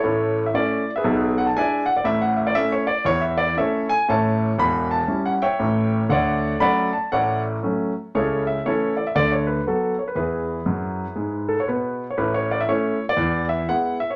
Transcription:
Already playing: E4 A4 C#5
0.04 A1 A2
0.46 E5
0.54 A3 C#4 E4 D5
0.96 G#4 B4 E5
1.04 B1 B2
1.38 F#5
1.46 A5
1.56 G#3 D4 E4 D5 E5 G#5
1.86 F#5
1.97 D5
2.04 A1 A2 E5
2.21 F#5
2.37 E5
2.47 D5
2.55 A3 C#4 E4 E5
2.72 C#5
2.87 D5
3.05 E2 E3 C#5
3.21 E5
3.38 D5
3.57 A3 C#4 E4 A4 C#5 E5
3.89 G#5
4.08 A1 A2 C#5 E5 A5
4.58 E1 E2 B5
4.91 A5
5.08 G3 C#4 E4
5.25 F#5
5.42 C#5 E5 G5
5.59 A1 A2
6.09 D2 D3 C#5 D5 F#5
6.60 F#3 A3 C#4 D5 F#5 B5
6.93 A5
7.12 A1 A2 C#5 D5 F#5
7.63 F#3 A3 C#4
8.15 C#2 C#3 E4 A4 C#5
8.47 E5
8.66 E3 A3 C#4 E4 A4 C#5
8.97 D5
9.07 E5
9.15 D2 D3 D5
9.32 C#5
9.47 B4
9.67 F#3 B3 F#4 A4
9.99 C#5
10.08 B4
10.15 E2 E3 E4 G#4 B4
10.66 F#2 F#3
11.16 G#2 G#3
11.48 A4
11.60 C#5
11.68 B2 B3 B4
12.10 C#5
12.18 A1 A2 B4
12.34 C#5
12.51 D5
12.61 E5
12.68 A3 C#4 E4 C#5
13.09 D5
13.16 E2 E3
13.49 E5
13.68 G#3 B3 E4 F#5
14.00 E5
14.10 C#5

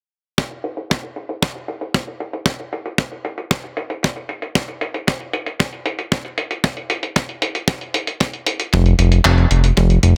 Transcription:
0.38 kick, closed hi-hat
0.51 closed hi-hat
0.64 closed hi-hat
0.77 closed hi-hat
0.90 kick, closed hi-hat
1.03 closed hi-hat
1.16 closed hi-hat
1.29 closed hi-hat
1.42 kick, closed hi-hat
1.55 closed hi-hat
1.68 closed hi-hat
1.81 closed hi-hat
1.94 kick, closed hi-hat
2.07 closed hi-hat
2.20 closed hi-hat
2.33 closed hi-hat
2.46 kick, closed hi-hat
2.60 closed hi-hat
2.73 closed hi-hat
2.86 closed hi-hat
2.98 kick, closed hi-hat
3.12 closed hi-hat
3.25 closed hi-hat
3.38 closed hi-hat
3.51 kick, closed hi-hat
3.64 closed hi-hat
3.77 closed hi-hat
3.90 closed hi-hat
4.03 kick, closed hi-hat
4.16 closed hi-hat
4.29 closed hi-hat
4.42 closed hi-hat
4.55 kick, closed hi-hat
4.68 closed hi-hat
4.81 closed hi-hat
4.94 closed hi-hat
5.07 kick, closed hi-hat
5.20 closed hi-hat
5.33 closed hi-hat
5.46 closed hi-hat
5.60 kick, closed hi-hat
5.73 closed hi-hat
5.86 closed hi-hat
5.99 closed hi-hat
6.12 kick, closed hi-hat
6.25 closed hi-hat
6.38 closed hi-hat
6.51 closed hi-hat
6.64 kick, closed hi-hat
6.77 closed hi-hat
6.90 closed hi-hat
7.03 closed hi-hat
7.16 kick, closed hi-hat
7.29 closed hi-hat
7.42 closed hi-hat
7.55 closed hi-hat
7.68 kick, closed hi-hat
7.81 closed hi-hat
7.94 closed hi-hat
8.07 closed hi-hat
8.20 kick, closed hi-hat
8.33 closed hi-hat
8.47 closed hi-hat
8.60 closed hi-hat
8.73 F1, kick, closed hi-hat
8.86 closed hi-hat
8.99 F1, closed hi-hat
9.12 closed hi-hat
9.25 F1, kick, clap, closed hi-hat
9.38 closed hi-hat
9.51 F1, closed hi-hat
9.64 closed hi-hat
9.77 F1, kick, closed hi-hat
9.90 closed hi-hat
10.03 F1, closed hi-hat

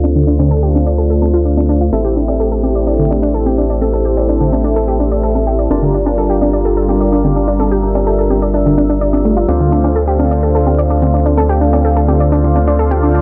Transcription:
Already playing: D2 D3 A3 D4 F4 A4 C5 D5 F5
0.04 D4, closed hi-hat, high conga
0.16 D3
0.27 D4
0.39 D3, closed hi-hat, cowbell, high conga
0.51 A4, closed hi-hat
0.63 G4
0.75 D4, high conga
0.86 D5, closed hi-hat
0.98 A4, closed hi-hat
1.10 A4
1.22 A4, high conga
1.34 F4, closed hi-hat
1.45 D4, closed hi-hat
1.57 D4, high conga
1.69 D4
1.81 F4, closed hi-hat
1.93 A1 C4 E4 G4 A4 C5 E5, closed hi-hat, high conga
2.05 G4
2.16 D4
2.28 D5, closed hi-hat, cowbell, high conga
2.40 A4, closed hi-hat
2.52 A4
2.63 G4, high conga
2.75 D5, closed hi-hat
2.87 D4, closed hi-hat
2.99 D3
3.11 D4, high conga
3.23 D4, closed hi-hat
3.34 A4, closed hi-hat
3.46 G4, high conga
3.58 D4
3.70 D5, closed hi-hat
3.82 A4, closed hi-hat, high conga
3.93 A4
4.05 G4
4.17 D5, closed hi-hat, cowbell, high conga
4.29 D4, closed hi-hat
4.41 D3
4.52 D4, high conga
4.64 D4, closed hi-hat
4.76 A4, closed hi-hat
4.88 G4
5.00 D4, high conga
5.12 D5, closed hi-hat
5.23 A4, closed hi-hat
5.35 A4, high conga
5.47 G4
5.59 D5, closed hi-hat
5.71 G1 G3 D4 F4 G4 A#4 D5, closed hi-hat, high conga
5.82 D3
5.94 D4
6.06 D4, closed hi-hat, cowbell, high conga
6.18 A4, closed hi-hat
6.30 G4
6.41 D4, high conga
6.53 D5, closed hi-hat
6.65 A4, closed hi-hat
6.77 A4
6.89 G4, high conga
7.01 D5, closed hi-hat
7.12 D4, closed hi-hat
7.24 D3, high conga
7.36 D4
7.48 D4, closed hi-hat
7.59 A4 E5, closed hi-hat, high conga
7.71 G4
7.83 D4
7.95 D5, closed hi-hat, cowbell, high conga
8.07 A4, closed hi-hat
8.19 A4
8.30 G4, high conga
8.42 D5, closed hi-hat
8.54 D4, closed hi-hat
8.66 D3
8.78 D4, high conga
8.90 D4, closed hi-hat
9.01 D5, closed hi-hat
9.13 D4, high conga
9.25 A3
9.37 F4, closed hi-hat
9.48 D2 D3 A3 C4 D4 F4 A4 C5 D5 F5, closed hi-hat, high conga
9.60 D3
9.72 D4
9.84 D4, closed hi-hat, cowbell, high conga
9.96 A4, closed hi-hat
10.08 G4
10.19 D4, high conga
10.31 D5, closed hi-hat
10.43 A4, closed hi-hat
10.55 A4
10.67 G4, high conga
10.78 D5, closed hi-hat
10.90 D4, closed hi-hat
11.02 D3, high conga
11.14 D4
11.26 D4, closed hi-hat
11.37 A4, closed hi-hat, high conga
11.49 G4
11.61 D4
11.73 D5, closed hi-hat, cowbell, high conga
11.85 A4, closed hi-hat
11.97 A4
12.08 G4, high conga
12.20 D5, closed hi-hat
12.32 D4, closed hi-hat
12.44 D3
12.56 D4, high conga
12.67 D4, closed hi-hat
12.79 A4, closed hi-hat
12.91 G4, high conga
13.03 D4
13.15 D5, closed hi-hat

